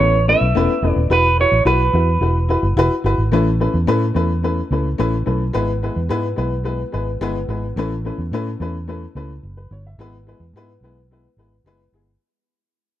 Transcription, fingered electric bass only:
0.00 0.33 A1 loud
0.41 0.53 B1 loud
0.55 0.66 E1 loud
0.82 0.94 E1 loud
0.96 1.08 D#1 medium
1.10 1.44 E1 loud
1.52 1.63 A1 loud
1.65 1.88 B1 medium
1.94 2.16 E2 loud
2.21 2.55 E1 loud
2.63 2.74 F#1 medium
2.76 2.88 E1 loud
3.04 3.16 G1 medium
3.18 3.29 G#1 medium
3.32 3.66 A1 loud
3.74 3.85 E2 medium
3.88 4.11 A2 loud
4.15 4.61 E2 medium
4.71 4.94 C#2 medium
4.99 5.22 A1 medium
5.27 5.50 B1 loud
5.55 5.89 G#1 loud
5.96 6.08 E2 medium
6.10 6.33 G#2 loud
6.38 6.83 B1 medium
6.94 7.16 G#1 medium
7.21 7.44 G1 medium
7.48 7.71 G#1 loud
7.76 8.10 A1 loud
8.18 8.30 E2 medium
8.32 8.54 A2 loud
8.60 9.05 E2 loud
9.15 9.38 C#2 medium
9.43 9.66 F#1 medium
9.71 9.94 G1 loud
9.98 10.33 G#1 loud
10.40 10.51 E2 medium
10.54 10.77 G#2 loud
10.81 11.27 B1 medium
11.37 11.60 G#1 medium
11.64 11.87 F#1 medium
11.92 12.15 G1 medium

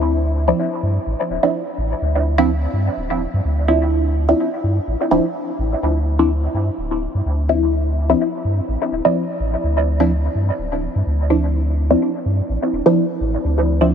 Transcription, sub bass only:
0.00 0.52 D2 medium
0.83 0.99 G2 medium
1.06 1.15 A1 medium
1.30 1.38 D1 medium
1.78 1.94 A1 medium
2.02 2.67 D2 medium
2.73 2.89 G2 medium
2.97 3.26 D1 medium
3.34 3.41 G2 medium
3.45 4.33 D2 medium
4.63 4.79 G2 medium
4.87 4.96 A1 medium
5.11 5.19 D1 medium
5.59 5.75 A1 medium
5.83 6.48 D2 loud
6.54 6.70 G2 medium
6.78 7.07 D1 medium
7.14 7.21 G2 medium
7.25 8.14 D2 medium
8.44 8.60 G2 medium
8.68 8.76 A1 medium
8.92 9.00 D1 medium
9.40 9.56 A1 medium
9.63 10.29 D2 loud
10.35 10.51 G2 medium
10.59 10.88 D1 medium
10.95 11.02 G2 loud
11.06 11.95 D2 medium
12.25 12.41 G2 medium
12.49 12.57 A1 medium
12.73 12.81 D1 medium
13.20 13.36 A1 medium
13.44 13.94 D2 medium

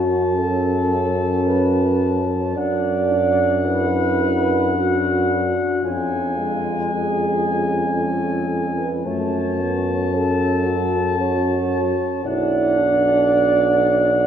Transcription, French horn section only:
0.00 0.34 F#4 medium
0.38 1.47 A4 medium
1.47 2.29 B4 medium
2.29 2.56 C#5 medium
2.56 3.63 D5 medium
3.65 4.72 B4 medium
4.75 5.84 F#4 medium
5.83 6.91 F4 medium
6.92 7.79 G#4 medium
7.96 8.76 A4 medium
8.78 9.05 B4 medium
9.06 10.14 C#5 medium
10.14 11.18 A4 medium
11.19 12.25 C#5 medium
12.26 14.27 D5 medium

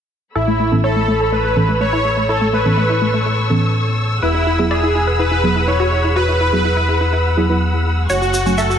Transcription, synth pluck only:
0.35 0.44 A4 medium
0.48 0.56 A3 medium
0.60 0.68 A3 medium
0.72 0.80 A3 medium
0.84 0.92 C#5 loud
0.96 1.04 A3 medium
1.08 1.16 A3 medium
1.20 1.28 A4 medium
1.32 1.40 A3 medium
1.44 1.53 A3 medium
1.69 1.77 A3 medium
1.81 1.89 A3 medium
1.93 2.01 E4 medium
2.05 2.13 A3 medium
2.17 2.25 A3 medium
2.29 2.37 E4 medium
2.41 2.49 A3 medium
2.53 2.61 A3 medium
2.77 2.86 A3 medium
2.90 2.98 E4 medium
3.02 3.10 A3 medium
3.14 3.22 A3 medium
3.26 3.34 A3 medium
4.22 4.31 B4 medium
4.35 4.43 E4 medium
4.47 4.55 E4 medium
4.59 4.67 E4 medium
4.71 4.79 D5 loud
4.83 4.91 E4 medium
4.95 5.03 E4 medium
5.07 5.15 B4 medium
5.19 5.28 E4 medium
5.31 5.40 E4 medium
5.56 5.64 E4 medium
5.68 5.76 E4 medium
5.80 5.88 F#4 medium
5.92 6.00 E4 medium
6.04 6.12 E4 medium
6.16 6.24 F#4 medium
6.28 6.36 E4 medium
6.40 6.49 E4 medium
6.65 6.73 E4 medium
6.77 6.85 E4 medium
6.89 6.97 E4 medium
7.01 7.09 E4 medium
7.13 7.21 E4 medium
8.10 8.18 C#5 loud
8.22 8.30 F#4 medium
8.34 8.42 F#4 medium
8.46 8.54 F#4 medium
8.58 8.66 E5 loud
8.70 8.78 F#4 medium

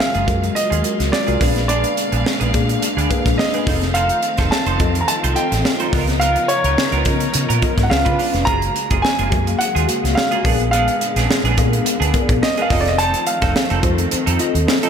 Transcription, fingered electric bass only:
0.15 0.25 F#1 medium
0.28 0.49 F#2 medium
0.71 0.81 D#2 medium
1.00 1.10 C#2 medium
1.28 1.38 C2 medium
1.41 1.83 A#1 loud
2.13 2.22 A#1 medium
2.41 2.51 A#1 medium
2.54 2.75 A#2 medium
2.97 3.07 D2 medium
3.26 3.35 A#1 medium
3.67 4.09 F1 loud
4.39 4.48 F1 medium
4.66 4.76 F1 medium
4.80 5.01 F2 medium
5.24 5.34 C2 medium
5.52 5.62 A1 medium
5.93 6.35 C#2 loud
6.64 6.74 C#2 medium
6.92 7.02 C#2 medium
7.06 7.27 C#3 loud
7.35 7.46 C#3 medium
7.50 7.59 A#2 medium
7.78 7.88 G#2 medium
7.91 8.02 C#2 loud
8.06 8.16 C#3 medium
8.34 8.44 F1 medium
8.91 9.01 F#1 medium
9.19 9.29 F#1 medium
9.32 9.53 F#2 loud
9.76 9.85 D#2 loud
10.04 10.14 C#2 medium
10.45 10.87 A#1 medium
11.16 11.26 A#1 loud
11.44 11.54 A#1 medium
11.58 11.79 A#2 medium
12.00 12.10 D2 medium
12.29 12.39 A#1 medium
12.71 13.13 F1 loud
13.42 13.52 F1 loud
13.71 13.80 F1 medium
13.83 14.04 F2 medium
14.13 muted fingered electric bass stroke soft
14.27 14.37 F2 loud
14.55 14.64 D#2 medium

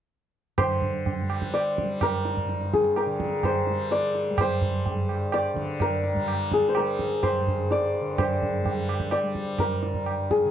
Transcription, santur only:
0.58 3.22 C5 medium
1.54 3.91 D5 medium
2.02 2.96 A#4 medium
2.73 5.75 G#4 medium
2.97 5.78 A#4 medium
3.45 4.40 C5 medium
3.92 5.33 D5 medium
4.41 6.68 C5 medium
5.34 7.71 D5 medium
5.82 6.76 A#4 medium
6.53 9.55 G#4 medium
6.69 7.23 C5 medium
6.77 9.58 A#4 medium
7.23 8.18 C5 medium
7.72 9.12 D5 medium
8.19 10.51 C5 medium
9.12 10.51 D5 medium
9.60 10.51 A#4 medium
10.31 10.51 G#4 medium

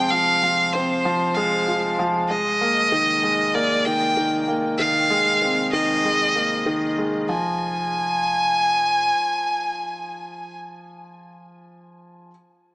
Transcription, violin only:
0.00 0.12 G5 loud
0.10 0.74 F5 loud
0.73 1.36 C5 loud
1.34 1.98 F5 loud
2.28 3.56 D#5 loud
3.54 3.87 D5 loud
3.85 4.48 G5 loud
4.78 5.69 F5 loud
5.73 6.94 D#5 loud
7.28 10.55 G#5 loud

